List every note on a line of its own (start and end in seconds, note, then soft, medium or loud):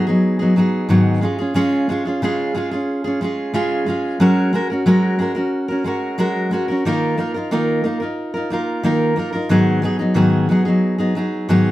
0.07 0.41 F#3 soft
0.07 0.40 B3 soft
0.07 0.39 D#4 soft
0.07 0.38 G#4 medium
0.39 0.55 F#3 soft
0.39 0.56 B3 soft
0.39 0.57 D#4 soft
0.39 0.56 G#4 soft
0.56 0.89 F#3 medium
0.56 0.89 B3 medium
0.56 0.89 D#4 medium
0.56 0.89 G#4 medium
0.89 1.22 G#2 medium
0.89 1.23 D#3 medium
0.89 1.21 F#3 medium
0.89 1.22 B3 medium
0.89 1.23 D#4 medium
0.89 1.23 G#4 medium
1.21 1.39 G#3 soft
1.21 1.39 C#4 medium
1.21 1.39 F4 medium
1.21 1.37 G#4 medium
1.39 1.55 C#4 soft
1.39 1.55 F4 soft
1.39 1.55 G#4 medium
1.54 1.88 C#3 medium
1.54 1.88 G#3 medium
1.54 1.89 C#4 medium
1.54 1.89 F4 medium
1.54 1.89 G#4 medium
1.89 2.05 G#3 medium
1.89 2.06 C#4 medium
1.89 2.06 F4 medium
1.89 2.04 G#4 medium
2.05 2.22 C#4 soft
2.05 2.23 F4 soft
2.05 2.22 G#4 soft
2.22 2.55 C#3 medium
2.22 2.53 G#3 medium
2.22 2.54 C#4 medium
2.22 2.55 F4 medium
2.22 2.56 G#4 medium
2.55 2.71 G#3 medium
2.55 2.72 C#4 medium
2.55 2.72 F4 medium
2.55 2.70 G#4 medium
2.71 3.06 C#4 soft
2.71 3.04 F4 soft
2.71 3.03 G#4 medium
3.04 3.21 C#4 soft
3.04 3.22 F4 soft
3.04 3.21 G#4 soft
3.21 3.53 G#3 medium
3.21 3.53 C#4 medium
3.21 3.54 F4 medium
3.21 3.55 G#4 medium
3.54 3.87 C#3 medium
3.54 3.85 G#3 medium
3.54 3.86 C#4 medium
3.54 3.87 F4 medium
3.54 3.88 G#4 medium
3.86 4.19 G#3 medium
3.86 4.20 C#4 medium
3.86 4.21 F4 medium
3.86 4.21 G#4 medium
4.20 4.53 F#3 medium
4.20 4.52 G#3 medium
4.20 4.53 C#4 medium
4.20 4.54 F#4 medium
4.20 4.54 A#4 medium
4.53 4.70 G#3 medium
4.53 4.70 C#4 medium
4.53 4.70 F#4 medium
4.53 4.69 A#4 medium
4.70 4.86 C#4 soft
4.70 4.86 F#4 soft
4.70 4.86 A#4 soft
4.86 5.19 F#3 medium
4.86 5.17 G#3 medium
4.86 5.18 C#4 medium
4.86 5.20 F#4 medium
4.86 5.20 A#4 medium
5.19 5.36 G#3 medium
5.19 5.36 C#4 medium
5.19 5.35 F#4 medium
5.19 5.34 A#4 medium
5.35 5.70 C#4 soft
5.35 5.69 F#4 medium
5.35 5.67 A#4 medium
5.68 5.84 C#4 soft
5.68 5.86 F#4 soft
5.68 5.85 A#4 soft
5.84 6.17 G#3 medium
5.84 6.18 C#4 medium
5.84 6.18 F#4 medium
5.84 6.19 A#4 medium
6.18 6.51 F#3 medium
6.18 6.50 G#3 medium
6.18 6.51 C#4 medium
6.18 6.52 F#4 medium
6.18 6.53 A#4 medium
6.51 6.68 G#3 medium
6.51 6.69 C#4 medium
6.51 6.69 F#4 medium
6.51 6.67 A#4 medium
6.68 6.86 C#4 soft
6.68 6.86 F#4 soft
6.68 6.85 A#4 medium
6.85 7.18 D#3 medium
6.85 7.16 A#3 medium
6.85 7.17 D#4 medium
6.85 7.19 F4 medium
6.85 7.19 A#4 medium
7.17 7.34 A#3 medium
7.17 7.35 D#4 medium
7.17 7.35 F4 medium
7.17 7.33 A#4 medium
7.34 7.51 D#4 soft
7.34 7.51 F4 soft
7.34 7.51 A#4 soft
7.51 7.84 D#3 medium
7.51 7.83 A#3 medium
7.51 7.84 D#4 medium
7.51 7.85 F4 medium
7.51 7.85 A#4 medium
7.84 8.01 A#3 medium
7.84 8.01 D#4 soft
7.84 8.01 F4 medium
7.84 7.99 A#4 medium
8.00 8.35 D#4 soft
8.00 8.34 F4 soft
8.00 8.33 A#4 soft
8.34 8.50 D#4 soft
8.34 8.51 F4 soft
8.34 8.51 A#4 soft
8.50 8.83 A#3 medium
8.50 8.83 D#4 medium
8.50 8.84 F4 medium
8.50 8.85 A#4 medium
8.83 9.17 D#3 medium
8.83 9.15 A#3 medium
8.83 9.16 D#4 medium
8.83 9.17 F4 medium
8.83 9.18 A#4 medium
9.16 9.33 A#3 medium
9.16 9.34 D#4 soft
9.16 9.33 F4 medium
9.16 9.31 A#4 medium
9.33 9.50 D#4 soft
9.33 9.51 F4 soft
9.33 9.50 A#4 soft
9.49 9.83 G#2 medium
9.49 9.83 D#3 medium
9.49 9.81 F#3 medium
9.49 9.82 B3 medium
9.49 9.83 D#4 medium
9.49 9.84 G#4 medium
9.82 9.99 F#3 medium
9.82 9.99 B3 medium
9.82 9.98 D#4 medium
9.82 9.98 G#4 medium
9.99 10.14 F#3 soft
9.99 10.15 B3 soft
9.99 10.15 D#4 soft
9.99 10.16 G#4 soft
10.14 10.49 G#2 medium
10.14 10.49 D#3 medium
10.14 10.48 F#3 medium
10.14 10.49 B3 medium
10.14 10.50 D#4 medium
10.14 10.50 G#4 medium
10.49 10.66 F#3 medium
10.49 10.66 B3 medium
10.49 10.65 D#4 medium
10.49 10.64 G#4 medium
10.65 11.00 F#3 soft
10.65 10.99 B3 soft
10.65 10.98 D#4 soft
10.65 10.97 G#4 medium
10.98 11.14 F#3 soft
10.98 11.15 B3 soft
10.98 11.16 D#4 soft
10.98 11.16 G#4 soft
11.15 11.48 F#3 medium
11.15 11.49 B3 medium
11.15 11.49 D#4 medium
11.15 11.49 G#4 medium
11.49 11.71 G#2 medium
11.49 11.71 D#3 medium
11.49 11.71 F#3 medium
11.49 11.71 B3 medium
11.49 11.71 D#4 medium
11.49 11.71 G#4 medium